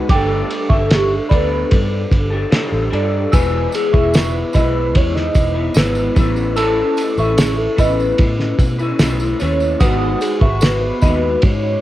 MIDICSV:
0, 0, Header, 1, 7, 480
1, 0, Start_track
1, 0, Tempo, 809717
1, 54, Time_signature, 4, 2, 24, 8
1, 7002, End_track
2, 0, Start_track
2, 0, Title_t, "Synth bell"
2, 0, Program_c, 0, 98
2, 58, Note_on_c, 0, 86, 104
2, 64, Note_on_c, 0, 79, 81
2, 284, Note_off_c, 0, 86, 0
2, 288, Note_off_c, 0, 79, 0
2, 410, Note_on_c, 0, 76, 66
2, 410, Note_on_c, 0, 85, 85
2, 640, Note_off_c, 0, 76, 0
2, 640, Note_off_c, 0, 85, 0
2, 765, Note_on_c, 0, 83, 83
2, 767, Note_on_c, 0, 74, 66
2, 884, Note_off_c, 0, 83, 0
2, 885, Note_off_c, 0, 74, 0
2, 1968, Note_on_c, 0, 88, 106
2, 1976, Note_on_c, 0, 80, 86
2, 2200, Note_off_c, 0, 88, 0
2, 2204, Note_off_c, 0, 80, 0
2, 2329, Note_on_c, 0, 76, 62
2, 2329, Note_on_c, 0, 85, 88
2, 2561, Note_off_c, 0, 76, 0
2, 2561, Note_off_c, 0, 85, 0
2, 2692, Note_on_c, 0, 83, 80
2, 2694, Note_on_c, 0, 75, 67
2, 2808, Note_off_c, 0, 83, 0
2, 2810, Note_off_c, 0, 75, 0
2, 3888, Note_on_c, 0, 88, 98
2, 3890, Note_on_c, 0, 81, 81
2, 4121, Note_off_c, 0, 88, 0
2, 4122, Note_off_c, 0, 81, 0
2, 4260, Note_on_c, 0, 85, 87
2, 4266, Note_on_c, 0, 76, 64
2, 4487, Note_off_c, 0, 85, 0
2, 4490, Note_off_c, 0, 76, 0
2, 4615, Note_on_c, 0, 83, 88
2, 4620, Note_on_c, 0, 75, 66
2, 4731, Note_off_c, 0, 83, 0
2, 4733, Note_off_c, 0, 75, 0
2, 5809, Note_on_c, 0, 87, 107
2, 5812, Note_on_c, 0, 78, 84
2, 6041, Note_off_c, 0, 87, 0
2, 6043, Note_off_c, 0, 78, 0
2, 6170, Note_on_c, 0, 85, 81
2, 6177, Note_on_c, 0, 76, 68
2, 6402, Note_off_c, 0, 85, 0
2, 6405, Note_off_c, 0, 76, 0
2, 6530, Note_on_c, 0, 83, 81
2, 6532, Note_on_c, 0, 75, 67
2, 6648, Note_off_c, 0, 83, 0
2, 6649, Note_off_c, 0, 75, 0
2, 7002, End_track
3, 0, Start_track
3, 0, Title_t, "Soft synth lead"
3, 0, Program_c, 1, 80
3, 86, Note_on_c, 1, 69, 106
3, 562, Note_on_c, 1, 67, 93
3, 571, Note_off_c, 1, 69, 0
3, 682, Note_on_c, 1, 69, 81
3, 691, Note_off_c, 1, 67, 0
3, 789, Note_off_c, 1, 69, 0
3, 801, Note_on_c, 1, 71, 97
3, 1245, Note_off_c, 1, 71, 0
3, 1743, Note_on_c, 1, 74, 93
3, 1963, Note_off_c, 1, 74, 0
3, 1974, Note_on_c, 1, 71, 103
3, 2199, Note_off_c, 1, 71, 0
3, 2222, Note_on_c, 1, 68, 103
3, 2456, Note_on_c, 1, 71, 100
3, 2465, Note_off_c, 1, 68, 0
3, 2573, Note_off_c, 1, 71, 0
3, 2576, Note_on_c, 1, 71, 111
3, 2942, Note_on_c, 1, 73, 119
3, 2951, Note_off_c, 1, 71, 0
3, 3051, Note_off_c, 1, 73, 0
3, 3054, Note_on_c, 1, 75, 122
3, 3418, Note_on_c, 1, 71, 103
3, 3427, Note_off_c, 1, 75, 0
3, 3523, Note_off_c, 1, 71, 0
3, 3527, Note_on_c, 1, 71, 109
3, 3888, Note_on_c, 1, 69, 109
3, 3897, Note_off_c, 1, 71, 0
3, 4374, Note_on_c, 1, 68, 91
3, 4383, Note_off_c, 1, 69, 0
3, 4487, Note_off_c, 1, 68, 0
3, 4490, Note_on_c, 1, 69, 90
3, 4619, Note_on_c, 1, 71, 94
3, 4628, Note_off_c, 1, 69, 0
3, 5099, Note_off_c, 1, 71, 0
3, 5568, Note_on_c, 1, 73, 86
3, 5811, Note_on_c, 1, 71, 107
3, 5820, Note_off_c, 1, 73, 0
3, 6050, Note_off_c, 1, 71, 0
3, 6053, Note_on_c, 1, 68, 92
3, 6288, Note_on_c, 1, 71, 98
3, 6296, Note_off_c, 1, 68, 0
3, 6404, Note_off_c, 1, 71, 0
3, 6408, Note_on_c, 1, 71, 100
3, 6770, Note_on_c, 1, 73, 114
3, 6779, Note_off_c, 1, 71, 0
3, 7002, Note_off_c, 1, 73, 0
3, 7002, End_track
4, 0, Start_track
4, 0, Title_t, "Clean electric guitar"
4, 0, Program_c, 2, 27
4, 0, Note_on_c, 2, 71, 67
4, 60, Note_off_c, 2, 71, 0
4, 60, Note_on_c, 2, 55, 83
4, 62, Note_on_c, 2, 62, 87
4, 63, Note_on_c, 2, 67, 98
4, 68, Note_on_c, 2, 69, 96
4, 405, Note_off_c, 2, 69, 0
4, 412, Note_on_c, 2, 69, 66
4, 415, Note_off_c, 2, 67, 0
4, 417, Note_off_c, 2, 55, 0
4, 418, Note_off_c, 2, 62, 0
4, 422, Note_on_c, 2, 67, 58
4, 430, Note_on_c, 2, 62, 52
4, 767, Note_on_c, 2, 55, 57
4, 769, Note_off_c, 2, 62, 0
4, 774, Note_off_c, 2, 69, 0
4, 776, Note_off_c, 2, 67, 0
4, 776, Note_on_c, 2, 62, 65
4, 783, Note_on_c, 2, 67, 61
4, 787, Note_on_c, 2, 69, 64
4, 1359, Note_off_c, 2, 69, 0
4, 1365, Note_off_c, 2, 67, 0
4, 1366, Note_on_c, 2, 69, 57
4, 1372, Note_off_c, 2, 55, 0
4, 1372, Note_on_c, 2, 67, 60
4, 1377, Note_off_c, 2, 62, 0
4, 1386, Note_on_c, 2, 62, 55
4, 1487, Note_off_c, 2, 62, 0
4, 1488, Note_on_c, 2, 55, 78
4, 1491, Note_off_c, 2, 69, 0
4, 1494, Note_off_c, 2, 67, 0
4, 1494, Note_on_c, 2, 62, 74
4, 1504, Note_on_c, 2, 67, 77
4, 1505, Note_on_c, 2, 69, 82
4, 1713, Note_off_c, 2, 55, 0
4, 1719, Note_off_c, 2, 62, 0
4, 1721, Note_on_c, 2, 55, 68
4, 1726, Note_on_c, 2, 62, 64
4, 1727, Note_off_c, 2, 67, 0
4, 1730, Note_off_c, 2, 69, 0
4, 1734, Note_on_c, 2, 67, 66
4, 1737, Note_on_c, 2, 69, 73
4, 1968, Note_on_c, 2, 52, 90
4, 1969, Note_off_c, 2, 55, 0
4, 1971, Note_off_c, 2, 62, 0
4, 1974, Note_on_c, 2, 56, 88
4, 1974, Note_on_c, 2, 59, 98
4, 1976, Note_off_c, 2, 67, 0
4, 1977, Note_off_c, 2, 69, 0
4, 1978, Note_on_c, 2, 64, 85
4, 1983, Note_on_c, 2, 71, 88
4, 2313, Note_off_c, 2, 71, 0
4, 2320, Note_on_c, 2, 71, 55
4, 2324, Note_off_c, 2, 64, 0
4, 2332, Note_off_c, 2, 52, 0
4, 2332, Note_off_c, 2, 59, 0
4, 2332, Note_on_c, 2, 64, 62
4, 2336, Note_off_c, 2, 56, 0
4, 2339, Note_on_c, 2, 59, 54
4, 2687, Note_off_c, 2, 59, 0
4, 2687, Note_on_c, 2, 56, 62
4, 2689, Note_off_c, 2, 71, 0
4, 2694, Note_on_c, 2, 59, 65
4, 2695, Note_off_c, 2, 64, 0
4, 2702, Note_on_c, 2, 64, 67
4, 2710, Note_on_c, 2, 71, 64
4, 3280, Note_off_c, 2, 71, 0
4, 3282, Note_on_c, 2, 71, 56
4, 3288, Note_off_c, 2, 64, 0
4, 3290, Note_on_c, 2, 64, 57
4, 3293, Note_off_c, 2, 56, 0
4, 3299, Note_off_c, 2, 59, 0
4, 3301, Note_on_c, 2, 59, 49
4, 3404, Note_off_c, 2, 59, 0
4, 3404, Note_on_c, 2, 56, 64
4, 3409, Note_off_c, 2, 64, 0
4, 3410, Note_off_c, 2, 71, 0
4, 3411, Note_on_c, 2, 59, 67
4, 3416, Note_on_c, 2, 64, 70
4, 3426, Note_on_c, 2, 71, 77
4, 3642, Note_off_c, 2, 56, 0
4, 3644, Note_on_c, 2, 57, 73
4, 3653, Note_off_c, 2, 59, 0
4, 3655, Note_on_c, 2, 61, 67
4, 3657, Note_off_c, 2, 64, 0
4, 3660, Note_off_c, 2, 71, 0
4, 3664, Note_on_c, 2, 64, 78
4, 3667, Note_on_c, 2, 71, 77
4, 3880, Note_off_c, 2, 57, 0
4, 3885, Note_off_c, 2, 61, 0
4, 3887, Note_on_c, 2, 57, 79
4, 3889, Note_off_c, 2, 64, 0
4, 3891, Note_off_c, 2, 71, 0
4, 3892, Note_on_c, 2, 61, 91
4, 3896, Note_on_c, 2, 64, 93
4, 3898, Note_on_c, 2, 71, 95
4, 4249, Note_off_c, 2, 71, 0
4, 4253, Note_off_c, 2, 57, 0
4, 4255, Note_off_c, 2, 61, 0
4, 4257, Note_off_c, 2, 64, 0
4, 4257, Note_on_c, 2, 71, 62
4, 4264, Note_on_c, 2, 64, 59
4, 4275, Note_on_c, 2, 61, 49
4, 4602, Note_on_c, 2, 57, 64
4, 4604, Note_off_c, 2, 61, 0
4, 4608, Note_off_c, 2, 64, 0
4, 4611, Note_on_c, 2, 61, 71
4, 4615, Note_off_c, 2, 71, 0
4, 4615, Note_on_c, 2, 64, 68
4, 4623, Note_on_c, 2, 71, 72
4, 5206, Note_off_c, 2, 71, 0
4, 5208, Note_on_c, 2, 71, 68
4, 5210, Note_off_c, 2, 57, 0
4, 5212, Note_off_c, 2, 64, 0
4, 5214, Note_off_c, 2, 61, 0
4, 5219, Note_on_c, 2, 64, 66
4, 5229, Note_on_c, 2, 61, 52
4, 5331, Note_off_c, 2, 61, 0
4, 5332, Note_on_c, 2, 57, 78
4, 5333, Note_off_c, 2, 71, 0
4, 5338, Note_on_c, 2, 61, 75
4, 5339, Note_off_c, 2, 64, 0
4, 5346, Note_on_c, 2, 64, 83
4, 5350, Note_on_c, 2, 71, 84
4, 5563, Note_off_c, 2, 57, 0
4, 5570, Note_on_c, 2, 57, 62
4, 5572, Note_off_c, 2, 61, 0
4, 5576, Note_off_c, 2, 64, 0
4, 5579, Note_on_c, 2, 61, 63
4, 5580, Note_off_c, 2, 71, 0
4, 5583, Note_on_c, 2, 64, 67
4, 5587, Note_on_c, 2, 71, 69
4, 5813, Note_off_c, 2, 57, 0
4, 5815, Note_on_c, 2, 56, 84
4, 5819, Note_off_c, 2, 61, 0
4, 5821, Note_off_c, 2, 64, 0
4, 5822, Note_off_c, 2, 71, 0
4, 5822, Note_on_c, 2, 63, 82
4, 5823, Note_on_c, 2, 66, 90
4, 5831, Note_on_c, 2, 71, 95
4, 6164, Note_off_c, 2, 71, 0
4, 6171, Note_on_c, 2, 71, 65
4, 6174, Note_off_c, 2, 66, 0
4, 6177, Note_off_c, 2, 56, 0
4, 6180, Note_off_c, 2, 63, 0
4, 6181, Note_on_c, 2, 66, 52
4, 6534, Note_off_c, 2, 71, 0
4, 6539, Note_on_c, 2, 56, 55
4, 6540, Note_off_c, 2, 66, 0
4, 6547, Note_on_c, 2, 63, 62
4, 6550, Note_on_c, 2, 66, 61
4, 6556, Note_on_c, 2, 71, 69
4, 7002, Note_off_c, 2, 56, 0
4, 7002, Note_off_c, 2, 63, 0
4, 7002, Note_off_c, 2, 66, 0
4, 7002, Note_off_c, 2, 71, 0
4, 7002, End_track
5, 0, Start_track
5, 0, Title_t, "Fingered electric bass"
5, 0, Program_c, 3, 33
5, 56, Note_on_c, 3, 31, 105
5, 248, Note_off_c, 3, 31, 0
5, 414, Note_on_c, 3, 31, 96
5, 703, Note_off_c, 3, 31, 0
5, 777, Note_on_c, 3, 38, 84
5, 969, Note_off_c, 3, 38, 0
5, 1019, Note_on_c, 3, 43, 100
5, 1210, Note_off_c, 3, 43, 0
5, 1254, Note_on_c, 3, 31, 85
5, 1447, Note_off_c, 3, 31, 0
5, 1613, Note_on_c, 3, 33, 82
5, 1710, Note_off_c, 3, 33, 0
5, 1734, Note_on_c, 3, 43, 107
5, 1927, Note_off_c, 3, 43, 0
5, 1976, Note_on_c, 3, 28, 106
5, 2169, Note_off_c, 3, 28, 0
5, 2333, Note_on_c, 3, 28, 102
5, 2623, Note_off_c, 3, 28, 0
5, 2698, Note_on_c, 3, 35, 98
5, 2940, Note_off_c, 3, 35, 0
5, 2940, Note_on_c, 3, 40, 101
5, 3131, Note_off_c, 3, 40, 0
5, 3173, Note_on_c, 3, 28, 87
5, 3367, Note_off_c, 3, 28, 0
5, 3413, Note_on_c, 3, 32, 96
5, 3607, Note_off_c, 3, 32, 0
5, 3656, Note_on_c, 3, 33, 94
5, 4041, Note_off_c, 3, 33, 0
5, 4254, Note_on_c, 3, 33, 102
5, 4544, Note_off_c, 3, 33, 0
5, 4616, Note_on_c, 3, 33, 84
5, 4809, Note_off_c, 3, 33, 0
5, 4857, Note_on_c, 3, 45, 108
5, 5049, Note_off_c, 3, 45, 0
5, 5091, Note_on_c, 3, 47, 97
5, 5286, Note_off_c, 3, 47, 0
5, 5336, Note_on_c, 3, 35, 91
5, 5529, Note_off_c, 3, 35, 0
5, 5582, Note_on_c, 3, 39, 91
5, 5773, Note_off_c, 3, 39, 0
5, 5815, Note_on_c, 3, 32, 104
5, 6008, Note_off_c, 3, 32, 0
5, 6172, Note_on_c, 3, 32, 108
5, 6462, Note_off_c, 3, 32, 0
5, 6536, Note_on_c, 3, 39, 83
5, 6729, Note_off_c, 3, 39, 0
5, 6777, Note_on_c, 3, 44, 109
5, 6969, Note_off_c, 3, 44, 0
5, 7002, End_track
6, 0, Start_track
6, 0, Title_t, "Muted fingered electric bass strokes"
6, 1495, Note_on_c, 9, 29, 49
6, 1554, Note_off_c, 9, 29, 0
6, 7002, End_track
7, 0, Start_track
7, 0, Title_t, "Drums"
7, 55, Note_on_c, 9, 36, 121
7, 55, Note_on_c, 9, 51, 82
7, 114, Note_off_c, 9, 36, 0
7, 114, Note_off_c, 9, 51, 0
7, 299, Note_on_c, 9, 51, 71
7, 358, Note_off_c, 9, 51, 0
7, 415, Note_on_c, 9, 36, 85
7, 474, Note_off_c, 9, 36, 0
7, 537, Note_on_c, 9, 51, 95
7, 542, Note_on_c, 9, 38, 111
7, 596, Note_off_c, 9, 51, 0
7, 601, Note_off_c, 9, 38, 0
7, 778, Note_on_c, 9, 36, 92
7, 782, Note_on_c, 9, 51, 62
7, 837, Note_off_c, 9, 36, 0
7, 841, Note_off_c, 9, 51, 0
7, 1015, Note_on_c, 9, 51, 79
7, 1020, Note_on_c, 9, 36, 102
7, 1074, Note_off_c, 9, 51, 0
7, 1079, Note_off_c, 9, 36, 0
7, 1254, Note_on_c, 9, 36, 86
7, 1258, Note_on_c, 9, 51, 63
7, 1313, Note_off_c, 9, 36, 0
7, 1318, Note_off_c, 9, 51, 0
7, 1496, Note_on_c, 9, 51, 91
7, 1497, Note_on_c, 9, 38, 116
7, 1555, Note_off_c, 9, 51, 0
7, 1557, Note_off_c, 9, 38, 0
7, 1739, Note_on_c, 9, 51, 54
7, 1799, Note_off_c, 9, 51, 0
7, 1972, Note_on_c, 9, 54, 58
7, 1975, Note_on_c, 9, 36, 119
7, 1977, Note_on_c, 9, 51, 78
7, 2032, Note_off_c, 9, 54, 0
7, 2034, Note_off_c, 9, 36, 0
7, 2037, Note_off_c, 9, 51, 0
7, 2206, Note_on_c, 9, 54, 51
7, 2220, Note_on_c, 9, 51, 72
7, 2265, Note_off_c, 9, 54, 0
7, 2279, Note_off_c, 9, 51, 0
7, 2334, Note_on_c, 9, 36, 95
7, 2394, Note_off_c, 9, 36, 0
7, 2452, Note_on_c, 9, 54, 95
7, 2457, Note_on_c, 9, 51, 91
7, 2462, Note_on_c, 9, 38, 108
7, 2511, Note_off_c, 9, 54, 0
7, 2516, Note_off_c, 9, 51, 0
7, 2521, Note_off_c, 9, 38, 0
7, 2686, Note_on_c, 9, 54, 48
7, 2697, Note_on_c, 9, 36, 84
7, 2699, Note_on_c, 9, 51, 59
7, 2745, Note_off_c, 9, 54, 0
7, 2756, Note_off_c, 9, 36, 0
7, 2758, Note_off_c, 9, 51, 0
7, 2934, Note_on_c, 9, 51, 83
7, 2938, Note_on_c, 9, 36, 101
7, 2993, Note_off_c, 9, 51, 0
7, 2997, Note_off_c, 9, 36, 0
7, 3060, Note_on_c, 9, 38, 38
7, 3119, Note_off_c, 9, 38, 0
7, 3169, Note_on_c, 9, 54, 47
7, 3173, Note_on_c, 9, 36, 86
7, 3175, Note_on_c, 9, 51, 58
7, 3228, Note_off_c, 9, 54, 0
7, 3232, Note_off_c, 9, 36, 0
7, 3234, Note_off_c, 9, 51, 0
7, 3405, Note_on_c, 9, 54, 86
7, 3417, Note_on_c, 9, 51, 89
7, 3419, Note_on_c, 9, 38, 120
7, 3464, Note_off_c, 9, 54, 0
7, 3477, Note_off_c, 9, 51, 0
7, 3478, Note_off_c, 9, 38, 0
7, 3527, Note_on_c, 9, 54, 50
7, 3587, Note_off_c, 9, 54, 0
7, 3652, Note_on_c, 9, 54, 54
7, 3654, Note_on_c, 9, 36, 113
7, 3655, Note_on_c, 9, 51, 53
7, 3711, Note_off_c, 9, 54, 0
7, 3713, Note_off_c, 9, 36, 0
7, 3714, Note_off_c, 9, 51, 0
7, 3771, Note_on_c, 9, 54, 33
7, 3830, Note_off_c, 9, 54, 0
7, 3892, Note_on_c, 9, 54, 60
7, 3896, Note_on_c, 9, 51, 82
7, 3951, Note_off_c, 9, 54, 0
7, 3956, Note_off_c, 9, 51, 0
7, 4132, Note_on_c, 9, 54, 49
7, 4136, Note_on_c, 9, 51, 70
7, 4191, Note_off_c, 9, 54, 0
7, 4195, Note_off_c, 9, 51, 0
7, 4253, Note_on_c, 9, 54, 32
7, 4312, Note_off_c, 9, 54, 0
7, 4373, Note_on_c, 9, 51, 95
7, 4374, Note_on_c, 9, 54, 94
7, 4378, Note_on_c, 9, 38, 113
7, 4432, Note_off_c, 9, 51, 0
7, 4433, Note_off_c, 9, 54, 0
7, 4437, Note_off_c, 9, 38, 0
7, 4612, Note_on_c, 9, 51, 61
7, 4613, Note_on_c, 9, 36, 91
7, 4613, Note_on_c, 9, 54, 51
7, 4672, Note_off_c, 9, 51, 0
7, 4673, Note_off_c, 9, 36, 0
7, 4673, Note_off_c, 9, 54, 0
7, 4741, Note_on_c, 9, 54, 31
7, 4800, Note_off_c, 9, 54, 0
7, 4849, Note_on_c, 9, 51, 78
7, 4855, Note_on_c, 9, 36, 109
7, 4908, Note_off_c, 9, 51, 0
7, 4914, Note_off_c, 9, 36, 0
7, 4977, Note_on_c, 9, 38, 41
7, 5036, Note_off_c, 9, 38, 0
7, 5090, Note_on_c, 9, 36, 93
7, 5093, Note_on_c, 9, 51, 60
7, 5093, Note_on_c, 9, 54, 46
7, 5149, Note_off_c, 9, 36, 0
7, 5152, Note_off_c, 9, 51, 0
7, 5152, Note_off_c, 9, 54, 0
7, 5212, Note_on_c, 9, 54, 30
7, 5271, Note_off_c, 9, 54, 0
7, 5330, Note_on_c, 9, 51, 86
7, 5330, Note_on_c, 9, 54, 81
7, 5331, Note_on_c, 9, 38, 110
7, 5389, Note_off_c, 9, 51, 0
7, 5390, Note_off_c, 9, 54, 0
7, 5391, Note_off_c, 9, 38, 0
7, 5452, Note_on_c, 9, 54, 50
7, 5511, Note_off_c, 9, 54, 0
7, 5571, Note_on_c, 9, 54, 49
7, 5579, Note_on_c, 9, 51, 56
7, 5630, Note_off_c, 9, 54, 0
7, 5638, Note_off_c, 9, 51, 0
7, 5692, Note_on_c, 9, 54, 32
7, 5751, Note_off_c, 9, 54, 0
7, 5811, Note_on_c, 9, 54, 57
7, 5813, Note_on_c, 9, 36, 119
7, 5814, Note_on_c, 9, 51, 85
7, 5870, Note_off_c, 9, 54, 0
7, 5872, Note_off_c, 9, 36, 0
7, 5873, Note_off_c, 9, 51, 0
7, 6051, Note_on_c, 9, 54, 51
7, 6057, Note_on_c, 9, 51, 69
7, 6110, Note_off_c, 9, 54, 0
7, 6116, Note_off_c, 9, 51, 0
7, 6173, Note_on_c, 9, 36, 89
7, 6232, Note_off_c, 9, 36, 0
7, 6289, Note_on_c, 9, 54, 95
7, 6296, Note_on_c, 9, 51, 91
7, 6301, Note_on_c, 9, 38, 110
7, 6348, Note_off_c, 9, 54, 0
7, 6355, Note_off_c, 9, 51, 0
7, 6360, Note_off_c, 9, 38, 0
7, 6529, Note_on_c, 9, 54, 53
7, 6535, Note_on_c, 9, 36, 88
7, 6536, Note_on_c, 9, 51, 57
7, 6589, Note_off_c, 9, 54, 0
7, 6595, Note_off_c, 9, 36, 0
7, 6595, Note_off_c, 9, 51, 0
7, 6769, Note_on_c, 9, 51, 81
7, 6777, Note_on_c, 9, 36, 107
7, 6829, Note_off_c, 9, 51, 0
7, 6837, Note_off_c, 9, 36, 0
7, 7002, End_track
0, 0, End_of_file